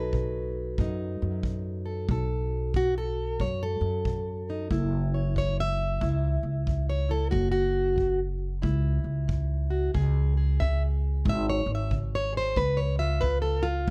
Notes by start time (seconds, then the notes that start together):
Already playing: B1 F#3 D#4 A4 B4
0.13 B2, kick
0.78 F#2 B2 D#4, kick
1.22 F#2
1.43 B2, kick
1.86 A4
2.09 B1 B2 A4, kick
2.74 B2 F#4, kick
2.98 A4
3.40 F#2 B2 C#5, kick
3.63 A4
3.81 F#2
4.05 B2, kick
4.50 D#4
4.71 F#1 F#2 E4, kick
5.14 C#5
5.36 F#2 C#5, kick
5.60 E5
6.01 C#2 F#2 E4, kick
6.43 C#2
6.67 F#2, kick
6.90 C#5
7.09 E4 A4
7.31 F#1 F#2 F#4, kick
7.52 F#4
7.96 F#2, kick
8.62 C#2 F#2 E4, kick
9.04 C#2
9.28 F#2, kick
9.70 F#4
9.94 C#2 C#3 G#4, kick
10.37 G#4
10.60 C#3 E5, kick
11.25 G#1 C#3, kick
11.29 E5
11.50 C#5
11.66 G#1
11.75 E5
11.91 C#3, kick
12.15 C#5
12.33 G#4
12.37 C5
12.56 C#2 C#3 B4, kick
12.77 C#5
12.99 F4 E5
13.21 C#3 B4, kick
13.42 A4
13.63 F4